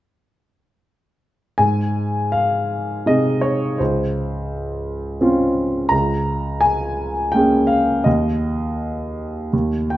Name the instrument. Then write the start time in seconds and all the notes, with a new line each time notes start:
grand piano
1.58 G#2 G#5
2.32 F5
3.06 C3 D#4 G#4 D#5
3.41 C#5
3.78 C#2 C5
5.21 C4 C#4 F4
5.89 C#2 A#5
6.61 G#5
7.32 A#3 C#4 G#4 G5
7.67 F5
8.04 D#2 D#5
9.53 D#2
9.90 G5